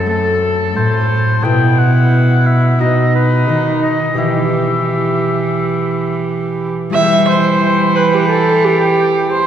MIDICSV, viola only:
0, 0, Header, 1, 2, 480
1, 0, Start_track
1, 0, Key_signature, 1, "minor"
1, 0, Tempo, 677966
1, 1025, Time_signature, 4, 2, 24, 8
1, 2467, Tempo, 686499
1, 6651, End_track
2, 0, Start_track
2, 0, Title_t, "Viola"
2, 0, Program_c, 0, 41
2, 63, Note_on_c, 0, 69, 61
2, 535, Note_off_c, 0, 69, 0
2, 546, Note_on_c, 0, 69, 70
2, 1015, Note_off_c, 0, 69, 0
2, 1034, Note_on_c, 0, 64, 76
2, 1989, Note_on_c, 0, 63, 66
2, 2000, Note_off_c, 0, 64, 0
2, 2943, Note_off_c, 0, 63, 0
2, 2947, Note_on_c, 0, 67, 59
2, 4711, Note_off_c, 0, 67, 0
2, 4878, Note_on_c, 0, 76, 100
2, 5102, Note_off_c, 0, 76, 0
2, 5122, Note_on_c, 0, 72, 95
2, 5594, Note_on_c, 0, 71, 81
2, 5605, Note_off_c, 0, 72, 0
2, 5722, Note_on_c, 0, 67, 77
2, 5732, Note_off_c, 0, 71, 0
2, 5826, Note_off_c, 0, 67, 0
2, 5831, Note_on_c, 0, 69, 85
2, 6072, Note_on_c, 0, 67, 90
2, 6083, Note_off_c, 0, 69, 0
2, 6543, Note_off_c, 0, 67, 0
2, 6547, Note_on_c, 0, 72, 87
2, 6651, Note_off_c, 0, 72, 0
2, 6651, End_track
0, 0, End_of_file